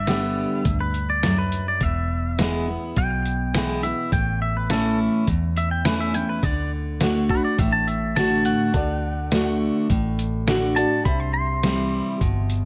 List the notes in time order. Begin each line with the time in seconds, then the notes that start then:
Already playing: G1 G2 E5
0.07 D3 G3 B3 G4, snare, closed hi-hat
0.65 D2 G2, kick, closed hi-hat
0.80 B4
0.94 closed hi-hat
1.10 D5
1.23 F#2, snare, closed hi-hat
1.38 B4
1.52 closed hi-hat
1.68 D5
1.81 E1 E2 E5, kick, closed hi-hat
2.38 E3 G#3 B3 E4, snare, closed hi-hat
2.68 B3 E4
2.96 B1 B2 G5, kick, closed hi-hat
3.26 closed hi-hat
3.54 E3 G#3 B3 E4, snare, closed hi-hat
3.83 B3 E4 E5, closed hi-hat
4.12 A1 A2 G5, kick, closed hi-hat
4.42 E5
4.57 B4
4.70 E3 A3 C#4 E4 A4, snare, closed hi-hat
5.27 E2, kick, closed hi-hat
5.57 E5, closed hi-hat
5.71 G5
5.85 E3 A3 C#4 E4 B4, snare, closed hi-hat
6.00 E5
6.14 C#4 E4 G5, closed hi-hat
6.29 B4
6.43 D2 D3 D5, kick, closed hi-hat
7.00 D3 A3 D4 F#4, snare, closed hi-hat
7.29 D4 F#4 B4, kick
7.45 D5
7.58 A1 A2 E5, kick, closed hi-hat
7.72 A5
7.87 E5, closed hi-hat
8.16 D3 A3 D4 F#4 A5, snare, closed hi-hat
8.45 F#5, closed hi-hat
8.72 D2 D3 F#4 A4 D5, kick, closed hi-hat
9.31 D3 A3 D4 F#4, snare, closed hi-hat
9.90 A1 A2, kick, closed hi-hat
10.19 closed hi-hat
10.47 D3 A3 D4 F#4, snare, closed hi-hat
10.76 D4 F#4 A4 D5 A5, closed hi-hat
11.03 C2 C3 G4 C5 E5 B5, kick, closed hi-hat
11.20 C6
11.34 C6
11.63 E3 G3 C4 E4, snare, closed hi-hat
12.21 G1 B2, kick, closed hi-hat
12.50 closed hi-hat